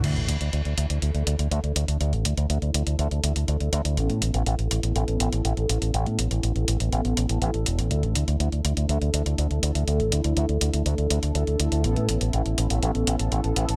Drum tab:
CC |x---------------|----------------|----------------|----------------|
HH |xxxxxxxxxxxxxxxx|xxxxxxxxxxxxxxxx|xxxxxxxxxxxxxxxx|xxxxxxxxxxxxxxxx|

CC |----------------|----------------|----------------|
HH |xxxxxxxxxxxxxxxx|xxxxxxxxxxxxxxxx|xxxxxxxxxxxxxxxx|